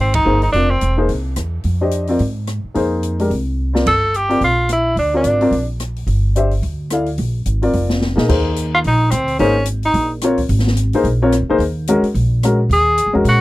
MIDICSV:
0, 0, Header, 1, 6, 480
1, 0, Start_track
1, 0, Tempo, 276625
1, 932, Time_signature, 4, 2, 24, 8
1, 23267, End_track
2, 0, Start_track
2, 0, Title_t, "Upright piano"
2, 0, Program_c, 0, 0
2, 434, Note_on_c, 0, 58, 54
2, 450, Note_on_c, 0, 68, 48
2, 451, Note_on_c, 0, 63, 50
2, 457, Note_on_c, 0, 72, 60
2, 699, Note_off_c, 0, 58, 0
2, 707, Note_off_c, 0, 63, 0
2, 707, Note_off_c, 0, 68, 0
2, 710, Note_off_c, 0, 72, 0
2, 946, Note_on_c, 0, 60, 46
2, 953, Note_on_c, 0, 65, 42
2, 954, Note_on_c, 0, 74, 54
2, 961, Note_on_c, 0, 70, 41
2, 1195, Note_off_c, 0, 60, 0
2, 1199, Note_off_c, 0, 65, 0
2, 1199, Note_off_c, 0, 74, 0
2, 1202, Note_off_c, 0, 70, 0
2, 1688, Note_on_c, 0, 58, 59
2, 1691, Note_on_c, 0, 63, 54
2, 1707, Note_on_c, 0, 72, 63
2, 1710, Note_on_c, 0, 68, 53
2, 1870, Note_off_c, 0, 58, 0
2, 1872, Note_off_c, 0, 63, 0
2, 1880, Note_off_c, 0, 72, 0
2, 1881, Note_off_c, 0, 68, 0
2, 3143, Note_on_c, 0, 62, 56
2, 3151, Note_on_c, 0, 67, 54
2, 3151, Note_on_c, 0, 72, 50
2, 3168, Note_on_c, 0, 75, 60
2, 3595, Note_off_c, 0, 62, 0
2, 3599, Note_off_c, 0, 67, 0
2, 3600, Note_off_c, 0, 72, 0
2, 3608, Note_off_c, 0, 75, 0
2, 3617, Note_on_c, 0, 60, 57
2, 3633, Note_on_c, 0, 65, 49
2, 3636, Note_on_c, 0, 70, 50
2, 3641, Note_on_c, 0, 74, 58
2, 3797, Note_off_c, 0, 60, 0
2, 3805, Note_off_c, 0, 65, 0
2, 3807, Note_off_c, 0, 70, 0
2, 3810, Note_off_c, 0, 74, 0
2, 4762, Note_on_c, 0, 58, 59
2, 4772, Note_on_c, 0, 63, 55
2, 4777, Note_on_c, 0, 68, 53
2, 4795, Note_on_c, 0, 72, 63
2, 5481, Note_off_c, 0, 58, 0
2, 5486, Note_off_c, 0, 63, 0
2, 5489, Note_off_c, 0, 68, 0
2, 5497, Note_off_c, 0, 72, 0
2, 5543, Note_on_c, 0, 56, 50
2, 5554, Note_on_c, 0, 62, 49
2, 5555, Note_on_c, 0, 67, 48
2, 5568, Note_on_c, 0, 70, 59
2, 5723, Note_off_c, 0, 56, 0
2, 5729, Note_off_c, 0, 62, 0
2, 5729, Note_off_c, 0, 67, 0
2, 5735, Note_off_c, 0, 70, 0
2, 6481, Note_on_c, 0, 60, 56
2, 6497, Note_on_c, 0, 65, 53
2, 6501, Note_on_c, 0, 70, 50
2, 6501, Note_on_c, 0, 74, 59
2, 6673, Note_off_c, 0, 60, 0
2, 6681, Note_off_c, 0, 65, 0
2, 6683, Note_off_c, 0, 70, 0
2, 6683, Note_off_c, 0, 74, 0
2, 7443, Note_on_c, 0, 60, 54
2, 7451, Note_on_c, 0, 70, 50
2, 7453, Note_on_c, 0, 65, 48
2, 7467, Note_on_c, 0, 74, 56
2, 7635, Note_off_c, 0, 60, 0
2, 7639, Note_off_c, 0, 70, 0
2, 7640, Note_off_c, 0, 65, 0
2, 7647, Note_off_c, 0, 74, 0
2, 8909, Note_on_c, 0, 60, 49
2, 8914, Note_on_c, 0, 65, 45
2, 8926, Note_on_c, 0, 70, 47
2, 8934, Note_on_c, 0, 74, 56
2, 9357, Note_off_c, 0, 60, 0
2, 9365, Note_off_c, 0, 65, 0
2, 9373, Note_off_c, 0, 70, 0
2, 9377, Note_off_c, 0, 74, 0
2, 9383, Note_on_c, 0, 60, 62
2, 9391, Note_on_c, 0, 65, 55
2, 9403, Note_on_c, 0, 70, 58
2, 9410, Note_on_c, 0, 74, 63
2, 9567, Note_off_c, 0, 60, 0
2, 9571, Note_off_c, 0, 65, 0
2, 9577, Note_off_c, 0, 70, 0
2, 9580, Note_off_c, 0, 74, 0
2, 11029, Note_on_c, 0, 62, 54
2, 11042, Note_on_c, 0, 67, 51
2, 11049, Note_on_c, 0, 72, 53
2, 11063, Note_on_c, 0, 76, 60
2, 11287, Note_off_c, 0, 62, 0
2, 11294, Note_off_c, 0, 67, 0
2, 11297, Note_off_c, 0, 72, 0
2, 11304, Note_off_c, 0, 76, 0
2, 12009, Note_on_c, 0, 69, 43
2, 12014, Note_on_c, 0, 64, 50
2, 12019, Note_on_c, 0, 74, 45
2, 12021, Note_on_c, 0, 77, 58
2, 12257, Note_off_c, 0, 69, 0
2, 12260, Note_off_c, 0, 64, 0
2, 12262, Note_off_c, 0, 74, 0
2, 12263, Note_off_c, 0, 77, 0
2, 13223, Note_on_c, 0, 60, 54
2, 13227, Note_on_c, 0, 65, 54
2, 13239, Note_on_c, 0, 70, 56
2, 13244, Note_on_c, 0, 74, 65
2, 13868, Note_off_c, 0, 60, 0
2, 13870, Note_off_c, 0, 65, 0
2, 13876, Note_off_c, 0, 70, 0
2, 13878, Note_off_c, 0, 74, 0
2, 14153, Note_on_c, 0, 58, 61
2, 14165, Note_on_c, 0, 63, 52
2, 14173, Note_on_c, 0, 68, 53
2, 14191, Note_on_c, 0, 75, 68
2, 14346, Note_off_c, 0, 58, 0
2, 14352, Note_off_c, 0, 63, 0
2, 14362, Note_off_c, 0, 68, 0
2, 14372, Note_off_c, 0, 75, 0
2, 14372, Note_on_c, 0, 58, 60
2, 14378, Note_on_c, 0, 63, 54
2, 14388, Note_on_c, 0, 68, 53
2, 14389, Note_on_c, 0, 72, 62
2, 15704, Note_off_c, 0, 58, 0
2, 15707, Note_off_c, 0, 63, 0
2, 15712, Note_off_c, 0, 68, 0
2, 15712, Note_off_c, 0, 72, 0
2, 16296, Note_on_c, 0, 58, 69
2, 16305, Note_on_c, 0, 63, 61
2, 16315, Note_on_c, 0, 68, 64
2, 16323, Note_on_c, 0, 72, 72
2, 16559, Note_off_c, 0, 58, 0
2, 16563, Note_off_c, 0, 63, 0
2, 16568, Note_off_c, 0, 68, 0
2, 16572, Note_off_c, 0, 72, 0
2, 17746, Note_on_c, 0, 60, 64
2, 17756, Note_on_c, 0, 65, 58
2, 17772, Note_on_c, 0, 70, 61
2, 17781, Note_on_c, 0, 73, 75
2, 18002, Note_off_c, 0, 60, 0
2, 18007, Note_off_c, 0, 65, 0
2, 18015, Note_off_c, 0, 70, 0
2, 18019, Note_off_c, 0, 73, 0
2, 18992, Note_on_c, 0, 58, 66
2, 18997, Note_on_c, 0, 63, 63
2, 19004, Note_on_c, 0, 68, 63
2, 19005, Note_on_c, 0, 72, 75
2, 19166, Note_off_c, 0, 58, 0
2, 19169, Note_off_c, 0, 63, 0
2, 19172, Note_off_c, 0, 68, 0
2, 19173, Note_off_c, 0, 72, 0
2, 19471, Note_on_c, 0, 60, 69
2, 19473, Note_on_c, 0, 65, 63
2, 19480, Note_on_c, 0, 73, 76
2, 19492, Note_on_c, 0, 70, 64
2, 19645, Note_off_c, 0, 60, 0
2, 19646, Note_off_c, 0, 65, 0
2, 19650, Note_off_c, 0, 73, 0
2, 19655, Note_off_c, 0, 70, 0
2, 19947, Note_on_c, 0, 58, 73
2, 19959, Note_on_c, 0, 63, 65
2, 19961, Note_on_c, 0, 68, 63
2, 19962, Note_on_c, 0, 72, 83
2, 20122, Note_off_c, 0, 58, 0
2, 20128, Note_off_c, 0, 63, 0
2, 20129, Note_off_c, 0, 68, 0
2, 20130, Note_off_c, 0, 72, 0
2, 20621, Note_on_c, 0, 56, 74
2, 20622, Note_on_c, 0, 66, 66
2, 20625, Note_on_c, 0, 61, 71
2, 20638, Note_on_c, 0, 70, 75
2, 20874, Note_off_c, 0, 56, 0
2, 20874, Note_off_c, 0, 66, 0
2, 20876, Note_off_c, 0, 61, 0
2, 20883, Note_off_c, 0, 70, 0
2, 21585, Note_on_c, 0, 56, 58
2, 21587, Note_on_c, 0, 61, 52
2, 21592, Note_on_c, 0, 66, 55
2, 21601, Note_on_c, 0, 70, 68
2, 21834, Note_off_c, 0, 56, 0
2, 21835, Note_off_c, 0, 61, 0
2, 21838, Note_off_c, 0, 66, 0
2, 21842, Note_off_c, 0, 70, 0
2, 22784, Note_on_c, 0, 56, 64
2, 22793, Note_on_c, 0, 61, 57
2, 22807, Note_on_c, 0, 66, 61
2, 22817, Note_on_c, 0, 70, 68
2, 23267, Note_off_c, 0, 56, 0
2, 23267, Note_off_c, 0, 61, 0
2, 23267, Note_off_c, 0, 66, 0
2, 23267, Note_off_c, 0, 70, 0
2, 23267, End_track
3, 0, Start_track
3, 0, Title_t, "Tenor saxophone"
3, 0, Program_c, 1, 66
3, 12, Note_on_c, 1, 60, 83
3, 251, Note_off_c, 1, 60, 0
3, 261, Note_on_c, 1, 63, 91
3, 706, Note_off_c, 1, 63, 0
3, 740, Note_on_c, 1, 63, 79
3, 891, Note_off_c, 1, 63, 0
3, 901, Note_on_c, 1, 62, 94
3, 1223, Note_on_c, 1, 60, 82
3, 1250, Note_off_c, 1, 62, 0
3, 1702, Note_off_c, 1, 60, 0
3, 6727, Note_on_c, 1, 69, 93
3, 7225, Note_on_c, 1, 67, 88
3, 7251, Note_off_c, 1, 69, 0
3, 7688, Note_off_c, 1, 67, 0
3, 7705, Note_on_c, 1, 65, 87
3, 8136, Note_off_c, 1, 65, 0
3, 8198, Note_on_c, 1, 64, 78
3, 8623, Note_off_c, 1, 64, 0
3, 8649, Note_on_c, 1, 62, 79
3, 8905, Note_off_c, 1, 62, 0
3, 8958, Note_on_c, 1, 62, 80
3, 9833, Note_off_c, 1, 62, 0
3, 15175, Note_on_c, 1, 65, 100
3, 15260, Note_off_c, 1, 65, 0
3, 15397, Note_on_c, 1, 63, 99
3, 15811, Note_on_c, 1, 60, 84
3, 15837, Note_off_c, 1, 63, 0
3, 16289, Note_off_c, 1, 60, 0
3, 16300, Note_on_c, 1, 61, 86
3, 16751, Note_off_c, 1, 61, 0
3, 17090, Note_on_c, 1, 63, 80
3, 17528, Note_off_c, 1, 63, 0
3, 22085, Note_on_c, 1, 68, 105
3, 22777, Note_off_c, 1, 68, 0
3, 23055, Note_on_c, 1, 66, 100
3, 23267, Note_off_c, 1, 66, 0
3, 23267, End_track
4, 0, Start_track
4, 0, Title_t, "Upright bass"
4, 0, Program_c, 2, 32
4, 0, Note_on_c, 2, 32, 72
4, 414, Note_off_c, 2, 32, 0
4, 442, Note_on_c, 2, 31, 68
4, 894, Note_off_c, 2, 31, 0
4, 925, Note_on_c, 2, 29, 72
4, 1376, Note_off_c, 2, 29, 0
4, 1414, Note_on_c, 2, 28, 67
4, 1861, Note_off_c, 2, 28, 0
4, 1892, Note_on_c, 2, 36, 76
4, 2341, Note_off_c, 2, 36, 0
4, 2368, Note_on_c, 2, 40, 64
4, 2820, Note_off_c, 2, 40, 0
4, 2849, Note_on_c, 2, 41, 74
4, 3768, Note_off_c, 2, 41, 0
4, 3813, Note_on_c, 2, 44, 79
4, 4529, Note_off_c, 2, 44, 0
4, 4772, Note_on_c, 2, 41, 73
4, 5692, Note_off_c, 2, 41, 0
4, 5729, Note_on_c, 2, 36, 72
4, 6651, Note_off_c, 2, 36, 0
4, 6694, Note_on_c, 2, 31, 72
4, 7614, Note_off_c, 2, 31, 0
4, 7648, Note_on_c, 2, 34, 78
4, 8572, Note_off_c, 2, 34, 0
4, 8604, Note_on_c, 2, 38, 75
4, 9064, Note_off_c, 2, 38, 0
4, 9089, Note_on_c, 2, 32, 69
4, 9547, Note_off_c, 2, 32, 0
4, 9559, Note_on_c, 2, 34, 75
4, 10488, Note_off_c, 2, 34, 0
4, 10527, Note_on_c, 2, 31, 75
4, 11453, Note_off_c, 2, 31, 0
4, 11494, Note_on_c, 2, 38, 79
4, 12416, Note_off_c, 2, 38, 0
4, 12460, Note_on_c, 2, 34, 79
4, 12914, Note_off_c, 2, 34, 0
4, 12941, Note_on_c, 2, 32, 71
4, 13394, Note_off_c, 2, 32, 0
4, 13422, Note_on_c, 2, 29, 80
4, 14138, Note_off_c, 2, 29, 0
4, 14178, Note_on_c, 2, 46, 63
4, 14370, Note_off_c, 2, 46, 0
4, 14389, Note_on_c, 2, 39, 83
4, 15303, Note_off_c, 2, 39, 0
4, 15354, Note_on_c, 2, 34, 86
4, 15799, Note_off_c, 2, 34, 0
4, 15825, Note_on_c, 2, 38, 67
4, 16274, Note_off_c, 2, 38, 0
4, 16301, Note_on_c, 2, 32, 86
4, 17216, Note_off_c, 2, 32, 0
4, 17243, Note_on_c, 2, 34, 90
4, 18165, Note_off_c, 2, 34, 0
4, 18205, Note_on_c, 2, 32, 88
4, 18923, Note_off_c, 2, 32, 0
4, 18975, Note_on_c, 2, 37, 70
4, 19143, Note_off_c, 2, 37, 0
4, 19154, Note_on_c, 2, 34, 85
4, 19761, Note_off_c, 2, 34, 0
4, 19808, Note_on_c, 2, 39, 58
4, 19948, Note_off_c, 2, 39, 0
4, 19958, Note_on_c, 2, 40, 66
4, 20089, Note_off_c, 2, 40, 0
4, 20100, Note_on_c, 2, 39, 87
4, 20826, Note_off_c, 2, 39, 0
4, 21072, Note_on_c, 2, 34, 87
4, 21992, Note_off_c, 2, 34, 0
4, 22027, Note_on_c, 2, 39, 84
4, 22631, Note_off_c, 2, 39, 0
4, 22668, Note_on_c, 2, 41, 60
4, 22806, Note_off_c, 2, 41, 0
4, 22816, Note_on_c, 2, 40, 72
4, 22971, Note_off_c, 2, 40, 0
4, 22981, Note_on_c, 2, 46, 88
4, 23267, Note_off_c, 2, 46, 0
4, 23267, End_track
5, 0, Start_track
5, 0, Title_t, "Muted upright bass strokes"
5, 4585, Note_on_c, 9, 29, 33
5, 4759, Note_off_c, 9, 29, 0
5, 20862, Note_on_c, 9, 29, 35
5, 21035, Note_off_c, 9, 29, 0
5, 23267, End_track
6, 0, Start_track
6, 0, Title_t, "Drums"
6, 238, Note_on_c, 9, 51, 62
6, 251, Note_on_c, 9, 36, 68
6, 412, Note_off_c, 9, 51, 0
6, 424, Note_off_c, 9, 36, 0
6, 724, Note_on_c, 9, 46, 32
6, 898, Note_off_c, 9, 46, 0
6, 924, Note_on_c, 9, 46, 39
6, 1098, Note_off_c, 9, 46, 0
6, 1406, Note_on_c, 9, 42, 46
6, 1580, Note_off_c, 9, 42, 0
6, 1886, Note_on_c, 9, 46, 39
6, 2059, Note_off_c, 9, 46, 0
6, 2359, Note_on_c, 9, 42, 47
6, 2365, Note_on_c, 9, 37, 58
6, 2533, Note_off_c, 9, 42, 0
6, 2538, Note_off_c, 9, 37, 0
6, 2837, Note_on_c, 9, 46, 38
6, 3010, Note_off_c, 9, 46, 0
6, 3320, Note_on_c, 9, 42, 46
6, 3493, Note_off_c, 9, 42, 0
6, 3597, Note_on_c, 9, 46, 35
6, 3771, Note_off_c, 9, 46, 0
6, 3799, Note_on_c, 9, 46, 38
6, 3973, Note_off_c, 9, 46, 0
6, 4290, Note_on_c, 9, 42, 43
6, 4295, Note_on_c, 9, 37, 54
6, 4463, Note_off_c, 9, 42, 0
6, 4468, Note_off_c, 9, 37, 0
6, 4776, Note_on_c, 9, 46, 39
6, 4950, Note_off_c, 9, 46, 0
6, 5255, Note_on_c, 9, 42, 45
6, 5428, Note_off_c, 9, 42, 0
6, 5542, Note_on_c, 9, 46, 35
6, 5716, Note_off_c, 9, 46, 0
6, 5742, Note_on_c, 9, 46, 40
6, 5915, Note_off_c, 9, 46, 0
6, 6513, Note_on_c, 9, 38, 47
6, 6687, Note_off_c, 9, 38, 0
6, 6702, Note_on_c, 9, 36, 67
6, 6706, Note_on_c, 9, 51, 61
6, 6876, Note_off_c, 9, 36, 0
6, 6880, Note_off_c, 9, 51, 0
6, 7186, Note_on_c, 9, 42, 44
6, 7360, Note_off_c, 9, 42, 0
6, 7468, Note_on_c, 9, 46, 34
6, 7642, Note_off_c, 9, 46, 0
6, 7655, Note_on_c, 9, 46, 38
6, 7829, Note_off_c, 9, 46, 0
6, 8134, Note_on_c, 9, 42, 48
6, 8140, Note_on_c, 9, 37, 55
6, 8308, Note_off_c, 9, 42, 0
6, 8313, Note_off_c, 9, 37, 0
6, 8623, Note_on_c, 9, 46, 41
6, 8797, Note_off_c, 9, 46, 0
6, 9088, Note_on_c, 9, 42, 46
6, 9261, Note_off_c, 9, 42, 0
6, 9383, Note_on_c, 9, 46, 36
6, 9557, Note_off_c, 9, 46, 0
6, 9584, Note_on_c, 9, 46, 36
6, 9758, Note_off_c, 9, 46, 0
6, 10059, Note_on_c, 9, 42, 47
6, 10065, Note_on_c, 9, 37, 54
6, 10233, Note_off_c, 9, 42, 0
6, 10238, Note_off_c, 9, 37, 0
6, 10349, Note_on_c, 9, 46, 33
6, 10522, Note_off_c, 9, 46, 0
6, 10539, Note_on_c, 9, 46, 39
6, 10712, Note_off_c, 9, 46, 0
6, 11032, Note_on_c, 9, 42, 46
6, 11205, Note_off_c, 9, 42, 0
6, 11300, Note_on_c, 9, 46, 35
6, 11474, Note_off_c, 9, 46, 0
6, 11501, Note_on_c, 9, 46, 37
6, 11674, Note_off_c, 9, 46, 0
6, 11976, Note_on_c, 9, 42, 50
6, 11981, Note_on_c, 9, 37, 58
6, 12150, Note_off_c, 9, 42, 0
6, 12155, Note_off_c, 9, 37, 0
6, 12255, Note_on_c, 9, 46, 33
6, 12428, Note_off_c, 9, 46, 0
6, 12453, Note_on_c, 9, 46, 43
6, 12626, Note_off_c, 9, 46, 0
6, 12936, Note_on_c, 9, 42, 46
6, 13110, Note_off_c, 9, 42, 0
6, 13231, Note_on_c, 9, 46, 35
6, 13404, Note_off_c, 9, 46, 0
6, 13418, Note_on_c, 9, 46, 41
6, 13592, Note_off_c, 9, 46, 0
6, 13700, Note_on_c, 9, 38, 47
6, 13874, Note_off_c, 9, 38, 0
6, 13902, Note_on_c, 9, 38, 42
6, 14075, Note_off_c, 9, 38, 0
6, 14187, Note_on_c, 9, 38, 51
6, 14360, Note_off_c, 9, 38, 0
6, 14391, Note_on_c, 9, 49, 75
6, 14392, Note_on_c, 9, 36, 71
6, 14565, Note_off_c, 9, 49, 0
6, 14566, Note_off_c, 9, 36, 0
6, 14858, Note_on_c, 9, 42, 53
6, 15032, Note_off_c, 9, 42, 0
6, 15341, Note_on_c, 9, 46, 44
6, 15515, Note_off_c, 9, 46, 0
6, 15813, Note_on_c, 9, 42, 55
6, 15818, Note_on_c, 9, 37, 61
6, 15986, Note_off_c, 9, 42, 0
6, 15991, Note_off_c, 9, 37, 0
6, 16098, Note_on_c, 9, 46, 39
6, 16272, Note_off_c, 9, 46, 0
6, 16295, Note_on_c, 9, 46, 47
6, 16468, Note_off_c, 9, 46, 0
6, 16752, Note_on_c, 9, 42, 57
6, 16926, Note_off_c, 9, 42, 0
6, 17054, Note_on_c, 9, 46, 41
6, 17227, Note_off_c, 9, 46, 0
6, 17248, Note_on_c, 9, 46, 44
6, 17421, Note_off_c, 9, 46, 0
6, 17723, Note_on_c, 9, 42, 55
6, 17728, Note_on_c, 9, 37, 58
6, 17897, Note_off_c, 9, 42, 0
6, 17902, Note_off_c, 9, 37, 0
6, 18004, Note_on_c, 9, 46, 38
6, 18012, Note_on_c, 9, 36, 45
6, 18177, Note_off_c, 9, 46, 0
6, 18185, Note_off_c, 9, 36, 0
6, 18204, Note_on_c, 9, 46, 48
6, 18373, Note_on_c, 9, 38, 29
6, 18377, Note_off_c, 9, 46, 0
6, 18517, Note_off_c, 9, 38, 0
6, 18517, Note_on_c, 9, 38, 45
6, 18682, Note_on_c, 9, 42, 56
6, 18691, Note_off_c, 9, 38, 0
6, 18855, Note_off_c, 9, 42, 0
6, 18967, Note_on_c, 9, 46, 42
6, 19141, Note_off_c, 9, 46, 0
6, 19166, Note_on_c, 9, 46, 47
6, 19339, Note_off_c, 9, 46, 0
6, 19646, Note_on_c, 9, 42, 56
6, 19652, Note_on_c, 9, 37, 59
6, 19820, Note_off_c, 9, 42, 0
6, 19825, Note_off_c, 9, 37, 0
6, 20128, Note_on_c, 9, 46, 50
6, 20301, Note_off_c, 9, 46, 0
6, 20604, Note_on_c, 9, 42, 55
6, 20777, Note_off_c, 9, 42, 0
6, 20885, Note_on_c, 9, 46, 41
6, 21059, Note_off_c, 9, 46, 0
6, 21084, Note_on_c, 9, 46, 46
6, 21258, Note_off_c, 9, 46, 0
6, 21570, Note_on_c, 9, 42, 55
6, 21575, Note_on_c, 9, 37, 63
6, 21743, Note_off_c, 9, 42, 0
6, 21749, Note_off_c, 9, 37, 0
6, 22048, Note_on_c, 9, 46, 50
6, 22221, Note_off_c, 9, 46, 0
6, 22516, Note_on_c, 9, 42, 58
6, 22689, Note_off_c, 9, 42, 0
6, 22990, Note_on_c, 9, 46, 48
6, 23164, Note_off_c, 9, 46, 0
6, 23267, End_track
0, 0, End_of_file